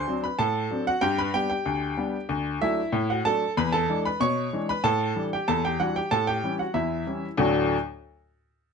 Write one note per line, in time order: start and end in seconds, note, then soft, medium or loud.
0.00 0.21 C5 medium
0.00 0.16 C6 loud
0.08 0.25 F#3 medium
0.08 0.25 C4 soft
0.08 0.26 D4 medium
0.24 0.39 B4 medium
0.24 0.39 B5 medium
0.39 0.66 A2 medium
0.39 0.84 A4 medium
0.39 0.84 A5 loud
0.71 0.88 F#3 soft
0.71 0.89 C4 medium
0.71 0.88 D4 medium
0.87 1.02 F#4 medium
0.87 1.03 F#5 loud
1.01 1.29 G2 loud
1.01 1.17 G4 medium
1.01 1.18 G5 loud
1.19 1.34 B4 medium
1.19 1.34 B5 loud
1.34 1.52 G3 medium
1.34 1.52 B3 medium
1.34 1.52 D4 medium
1.34 1.49 G4 medium
1.34 1.48 G5 loud
1.50 2.26 G4 medium
1.50 2.25 G5 medium
1.66 1.93 D2 medium
1.97 2.15 G3 medium
1.97 2.15 B3 medium
1.97 2.16 D4 medium
2.29 2.56 D2 medium
2.61 2.79 F#3 medium
2.61 2.79 A3 medium
2.61 2.79 D4 medium
2.61 3.06 E4 medium
2.61 3.06 E5 loud
2.92 3.19 A2 loud
3.10 3.25 F#4 medium
3.10 3.25 F#5 medium
3.25 3.43 F#3 soft
3.25 3.43 A3 medium
3.25 3.43 D4 medium
3.25 3.55 A4 medium
3.25 3.50 A5 loud
3.57 3.84 E2 medium
3.57 3.72 B4 loud
3.57 3.73 B5 loud
3.72 4.02 A4 medium
3.72 3.98 A5 loud
3.90 4.07 E3 medium
3.90 4.07 G#3 medium
3.90 4.07 D4 medium
4.05 4.20 B4 medium
4.05 4.21 B5 medium
4.20 4.47 B2 medium
4.20 4.65 C#5 medium
4.20 4.58 C#6 loud
4.53 4.70 E3 medium
4.53 4.70 G#3 medium
4.53 4.71 D4 medium
4.69 4.84 B4 medium
4.69 4.84 B5 loud
4.84 5.11 A2 medium
4.84 5.28 A4 medium
4.84 5.22 A5 loud
5.16 5.33 E3 medium
5.16 5.33 G3 medium
5.16 5.34 D4 medium
5.33 5.48 G4 medium
5.33 5.48 G5 medium
5.48 5.75 E2 medium
5.48 5.63 A4 medium
5.48 5.63 A5 loud
5.65 5.80 G4 medium
5.65 5.80 G5 loud
5.80 5.97 E3 medium
5.80 5.98 G3 medium
5.80 5.98 D4 soft
5.80 5.95 F#4 medium
5.80 5.95 F#5 loud
5.96 6.11 G4 medium
5.96 6.12 G5 medium
6.11 6.38 A2 medium
6.11 6.27 A4 medium
6.11 6.27 A5 loud
6.27 6.58 G4 medium
6.27 6.53 G5 loud
6.44 6.61 E3 medium
6.44 6.61 G3 medium
6.44 6.62 C#4 medium
6.59 6.75 F#4 medium
6.59 6.75 F#5 medium
6.74 7.02 E2 medium
6.74 7.35 E4 medium
6.74 7.26 E5 medium
7.07 7.24 E3 soft
7.07 7.25 G3 soft
7.07 7.25 C#4 soft
7.37 7.74 D2 loud
7.37 7.74 A2 medium
7.37 7.74 F#3 medium
7.37 7.75 A3 medium
7.37 7.75 D4 medium
7.37 7.75 F#4 medium
7.37 7.75 D5 medium